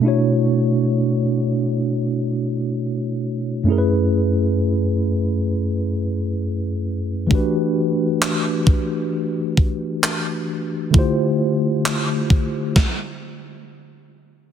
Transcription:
<<
  \new Staff \with { instrumentName = "Tine electric piano" } { \time 4/4 \key b \minor \tempo 4 = 66 <b, a d' e' fis' cis''>1 | <fis, a cis' e' gis' ais' b'>1 | <e a d' fis' g' b'>1 | <d a e' f' g' c''>2 r2 | }
  \new DrumStaff \with { instrumentName = "Drums" } \drummode { \time 4/4 r4 r4 r4 r4 | r4 r4 r4 r4 | bd4 hc8 bd8 r8 bd8 hc4 | bd4 hc8 bd8 <bd sn>4 r4 | }
>>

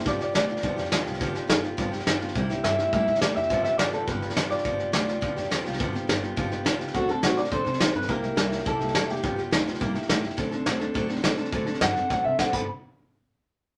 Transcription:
<<
  \new Staff \with { instrumentName = "Clean electric guitar" } { \time 4/4 \key g \mixolydian \tempo 4 = 209 d''8 d''8 d''2 r4 | r1 | r4 e''4 e''4 d''8 e''8~ | e''8 e''8 d''8 a'8 b'4. d''8~ |
d''4 d''2 r4 | r1 | fis'8 a'8 fis'8 d''8 c''4. b'8 | bes'2 a'4. g'8~ |
g'8 r2. r8 | r1 | r4 fis''4 fis''8 e''8 fis''8 b''8 | r1 | }
  \new Staff \with { instrumentName = "Steel-string acoustic guitar" } { \time 4/4 \key g \mixolydian <g, d f b f' g'>8 <f b f' g'>8 <f b f' g'>8 <f b f' g'>8 <g, d f b f' g'>8 <f b f' g'>8 <f b f' g'>8 <f b f' g'>8 | <g, d f b f' g'>8 <f b f' g'>8 <f b f'>8 <f b f' g'>8 <g, d f b f' g'>8 <f b f' g'>8 <f b f' g'>8 <f b f' g'>8 | <c g bes e' g'>8 <bes e' g'>8 <g bes e' g'>8 <bes e' g'>8 <c g bes e' g'>8 <bes e' g'>8 <g bes e' g'>8 <bes e' g'>8 | <g, d f b f' g'>8 <f b f' g'>8 <f b f' g'>8 <f b f' g'>8 <g, d f b f' g'>8 <f b f' g'>8 <f b f' g'>8 <f b f' g'>8 |
<g, d f b f' g'>8 <f b f' g'>8 <f b f' g'>8 <f b f' g'>8 <g, d f b f' g'>8 <f b f' g'>8 <f b f' g'>8 <f b f' g'>8 | <g, d f b f' g'>8 <f b f' g'>8 <f b f' g'>8 <f b f' g'>8 <g, d f b f' g'>8 <f b f' g'>8 <f b f' g'>8 <f b f' g'>8 | <d fis c' d' a'>8 <c' d' a'>8 <fis c' d' a'>8 <c' d' a'>8 <d fis c' d' a'>8 <c' d' a'>8 <fis c' d' a'>8 <c' d' a'>8 | <c g bes e' g'>8 <bes e' g'>8 <g bes e' g'>8 <bes e' g'>8 <c g bes e' g'>8 <bes e' g'>8 <g bes e' g'>8 <bes e' g'>8 |
<g, d f b f' g'>8 <f b f' g'>8 <f b f' g'>8 <f b f' g'>8 <c g bes e' g'>8 <bes e' g'>8 <g bes e' g'>8 <bes e' g'>8 | <d fis c' d' a'>8 <c' d' a'>8 <fis c' d' a'>8 <c' d' a'>8 <d fis c' d' a'>8 <c' d' a'>8 <fis c' d' a'>8 <c' d' a'>8 | <d fis c' d' a'>8 <c' d' a'>8 <d fis c' d' a'>8 <c' d' a'>8 <fis c' d' a'>8 <c' d' a'>8 <d fis c' d' a'>8 <g, d f b d' a'>8 | r1 | }
  \new Staff \with { instrumentName = "Upright bass" } { \clef bass \time 4/4 \key g \mixolydian g,,4 d,4 e,8 f,8 e,8 c,8 | g,,4 g,,4 g,,4 g,,4 | c,4 g,4 a,8 bes,8 a,8 f,8 | g,,4 g,,4 g,,4 g,,4 |
g,,4 d,4 e,8 f,8 e,8 c,8 | g,,4 g,,4 g,,4 cis,4 | d,4 a,4 b,8 c8 b,8 g,8 | c,4 c,4 c,4 f,,4 |
g,,4 d,4 c,8 bes,8 a,8 f,8 | d,4 d,4 d,4 d,4 | d,4 g,8 fis,8 a,8 c8 b,8 g,,8 | r1 | }
  \new DrumStaff \with { instrumentName = "Drums" } \drummode { \time 4/4 <bd sn>8 sn8 <hhp sn>8 sn16 sn16 <bd sn>8 sn16 sn16 <hhp sn>8 sn16 sn16 | <bd sn>8 sn8 <hhp sn>8 sn8 <bd sn>8 sn16 sn16 <hhp sn>8 sn16 sn16 | <bd sn>8 sn8 <hhp sn>8 sn8 <bd sn>8 sn16 sn16 <hhp sn>8 sn16 sn16 | <bd sn>8 sn8 <hhp sn>8 sn8 <bd sn>8 sn16 sn16 <hhp sn>8 sn16 sn16 |
<bd sn>8 sn8 <hhp sn>8 sn8 <bd sn>8 sn16 sn16 <hhp sn>8 sn16 sn16 | <bd sn>8 sn8 <hhp sn>8 sn8 <bd sn>8 sn8 <hhp sn>8 sn16 sn16 | <bd sn>8 sn8 <hhp sn>8 sn16 sn16 <bd sn>8 sn16 sn16 <hhp sn>8 sn16 sn16 | <bd sn>8 sn8 <hhp sn>8 sn16 sn16 <bd sn>8 sn16 sn16 <hhp sn>8 sn16 sn16 |
<bd sn>8 sn8 <hhp sn>8 sn16 sn16 <bd sn>8 sn16 sn16 <hhp sn>8 sn16 sn16 | <bd sn>8 sn8 <hhp sn>8 sn8 <bd sn>8 sn16 sn16 <hhp sn>8 sn16 sn16 | <bd sn>8 sn16 sn16 <hhp bd sn>8 sn8 <bd sn>4 <hhp bd sn>8 <cymc bd>8 | r4 r4 r4 r4 | }
>>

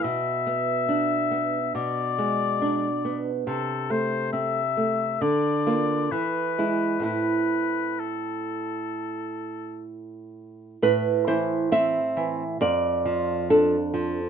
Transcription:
<<
  \new Staff \with { instrumentName = "Oboe" } { \time 4/4 \key a \minor \tempo 4 = 68 e''2 d''4. r8 | a'8 c''8 e''4 d''4 b'4 | b'4 a'2 r4 | r1 | }
  \new Staff \with { instrumentName = "Nylon-string guitar" } { \time 4/4 \key a \minor << { r1 | r1 | r1 | b'8 c''8 e''4 d''4 a'4 | } \\ { b,8 b8 d'8 b8 b,8 gis8 d'8 b8 | c8 a8 c'8 a8 d8 <bes f'>8 e8 <gis e'>8 | <a, c' e'>1 | a,8 e8 c'8 e8 f,8 f8 d'8 f8 | } >> }
>>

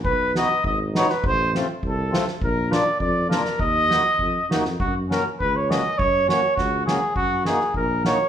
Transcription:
<<
  \new Staff \with { instrumentName = "Trumpet" } { \time 2/4 \key ces \lydian \tempo 4 = 102 b'8 dis''8 dis''8 des''16 b'16 | c''8 r8 a'8. r16 | bes'8 d''8 d''8 bes'8 | ees''4. r8 |
\key fis \major fis'8 ais'8 b'16 cis''16 dis''8 | cis''8 cis''8 fis'8 gis'8 | fis'8 gis'8 ais'8 cis''8 | }
  \new Staff \with { instrumentName = "Accordion" } { \time 2/4 \key ces \lydian r8 <b dis' fis'>8 r8 <b dis' fis'>8 | r8 <a c' f'>8 r8 <a c' f'>8 | r8 <bes d' f'>8 r8 <bes d' f'>8 | r8 <bes ees' ges'>8 r8 <bes ees' ges'>8 |
\key fis \major r8 <ais cis' fis'>8 r8 <ais cis' fis'>8 | r8 <ais cis' fis'>8 r8 <ais cis' fis'>8 | r8 <ais dis' fis'>8 r8 <ais dis' fis'>8 | }
  \new Staff \with { instrumentName = "Tuba" } { \clef bass \time 2/4 \key ces \lydian b,,4 aes,,4 | a,,4 c,4 | bes,,4 f,4 | ees,4 f,8 ees,16 f,16 |
\key fis \major fis,4 cis,4 | fis,4 cis,4 | fis,4 ais,,4 | }
  \new DrumStaff \with { instrumentName = "Drums" } \drummode { \time 2/4 bd8 sn8 bd8 sn16 sn16 | bd8 sn8 bd8 sn16 sn16 | bd8 sn8 bd8 sn16 sn16 | bd8 sn8 bd8 sn16 sn16 |
bd8 sn8 bd8 sn8 | bd8 sn8 <bd sn>8 sn8 | bd8 sn16 sn16 bd8 sn8 | }
>>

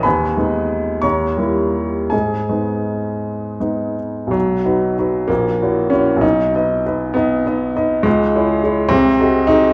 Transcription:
\new Staff \with { instrumentName = "Upright piano" } { \time 6/8 \key gis \minor \tempo 4. = 64 << { <b' gis'' b''>4. <cis'' ais'' cis'''>4. | <gis' dis'' gis''>2~ <gis' dis'' gis''>8 r8 | \key b \major fis4. ais4 cis'8 | dis'4. b4. |
gis4. bis4 dis'8 | } \\ { dis,8 <gis b dis'>4 dis,8 <g ais e'>4 | gis,8 <gis b dis'>4. <gis b dis'>4 | b,,8 <dis' fis' b'>8 <dis' fis' b'>8 ais,,8 <e' fis' cis''>8 <e' fis' cis''>8 | b,,8 <dis' b' dis''>8 <dis' b' dis''>8 <dis' b' dis''>8 <dis' b' dis''>8 <dis' b' dis''>8 |
cis,8 <e' gis' cis''>8 <e' gis' cis''>8 bis,,8 <fis' gis' dis''>8 <fis' gis' dis''>8 | } >> }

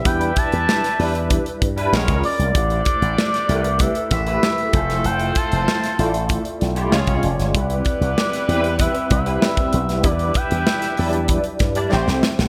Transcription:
<<
  \new Staff \with { instrumentName = "Analog synth lead" } { \time 4/4 \key a \minor \tempo 4 = 96 g''8 a''4. r4. d''8~ | d''2 e''8 e''4. | g''8 a''4. r4. d''8~ | d''2 e''8 e''4. |
d''8 g''4. r2 | }
  \new Staff \with { instrumentName = "Horn section" } { \time 4/4 \key a \minor <e' g' b' e''>2~ <e' g' b' e''>8 r8 <des' aes' bes' des''>8 r8 | <d' g' a' d''>2. r8 <c' f' a' c''>8~ | <c' f' a' c''>2~ <c' f' a' c''>8 r8 <cis' eis' gis' cis''>8 r8 | <b e' g' b'>2.~ <b e' g' b'>8 r8 |
<e' g' b' e''>2~ <e' g' b' e''>8 r8 <c' e' g' c''>8 r8 | }
  \new Staff \with { instrumentName = "Tine electric piano" } { \time 4/4 \key a \minor <g d' e' b'>4. <g d' e' b'>4~ <g d' e' b'>16 <g d' e' b'>16 <aes des' f' bes'>4 | <a e' g' b' c''>4. <a e' g' bes' b'>4~ <a e' g' bes' b'>16 <a e' g' b'>8. <a e' f' c''>8~ | <a e' f' c''>4. <a e' f' d''>4~ <a e' f' d''>16 <a e' f' g'>16 <gis cis' eis' cis''>4 | <g c' e' a' b'>4. <g c' e' b'>4~ <g c' e' b'>16 <g c' e' b'>4~ <g c' e' b'>16 |
<g d' e' bes' b'>4. <fis g d' e' d''>4~ <fis g d' e' d''>16 <g d' e' d''>16 <a c' g' c''>4 | }
  \new Staff \with { instrumentName = "Slap bass" } { \clef bass \time 4/4 \key a \minor e,8 r16 e,16 r8 e,8. r16 g,8 bes,,16 des,16 r16 c,16 | a,,8 r16 a,,16 r8 c,8. r16 a,,8 r8 f,,8 | f,,8 r16 f,,16 r8 a,,8. r16 b,,8 cis,16 bis,,16 eis,,16 g,,16 | c,8 r16 c,16 r8 e,8. r16 c,8 r8 b,,8 |
e,8 r16 e,16 r8 e,8. r16 g,8 a,,16 c,16 r16 b,,16 | }
  \new DrumStaff \with { instrumentName = "Drums" } \drummode { \time 4/4 <hh bd>16 hh16 <hh bd>16 hh16 sn16 <hh sn>16 hho16 hh16 <hh bd>16 hh16 <hh bd>16 hh16 sn16 <hh bd>16 hho16 hh16 | <hh bd>16 hh16 <hh bd>16 hh16 sn16 <hh sn>16 hh16 hh16 <hh bd>16 hh16 <hh bd sn>16 hh16 sn16 hh16 <hh bd>16 <hh sn>16 | hh16 hh16 <hh bd>16 hh16 sn16 <hh sn>16 hh16 hh16 <hh bd>16 hh16 <hh sn>16 hh16 sn16 <hh bd>16 hh16 <hh sn>16 | <hh bd>16 hh16 <hh bd>16 hh16 sn16 <hh sn>16 hh16 hh16 <hh bd>16 hh16 <hh bd>16 hh16 sn16 <hh bd>16 hh16 <hh sn>16 |
<hh bd>16 hh16 <hh bd>16 hh16 sn16 <hh sn>16 hho16 hh16 <hh bd>16 hh16 <hh bd sn>16 hh16 sn16 sn16 sn16 sn16 | }
>>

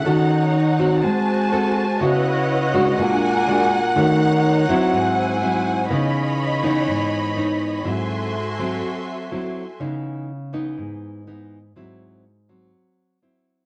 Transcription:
<<
  \new Staff \with { instrumentName = "String section" } { \time 4/4 \key cis \minor \tempo 4 = 123 <dis' cis'' fis''>2 <fis' bis' gis'' a''>2 | <e' b' cis'' dis'' fis''>2 <d' ais' gis''>2 | <dis' cis''>2 <e' bis' gis''>2 | <cis'' dis'' b''>1 |
<fis' a' e'' gis'' bis''>1 | r1 | r1 | }
  \new Staff \with { instrumentName = "Nylon-string guitar" } { \time 4/4 \key cis \minor << { <cis' fis' a'>4 r8 <bis fis'>4. <bis fis' a'>8 r8 | <b e' fis'>4. <gis d' fis'>4. <gis d' fis'>8 r8 | <a cis' fis'>4. <fis bis e'>4. <fis bis e'>4 | <e b dis'>4. <e b dis'>4. <e b dis'>4 |
<fis bis e'>4 r8 <fis bis>4. <fis bis e'>8 r8 | <e b dis'>4 r8 <e b dis'>4. <e b dis'>8 r8 | <fis bis e'>4 r8 <fis bis>4. <fis bis e'>4 | } \\ { dis2 gis2 | cis2 ais,2 | dis2 gis,2 | cis2 gis,2 |
gis,2 r2 | cis2 gis,2 | gis,2 r2 | } >> }
>>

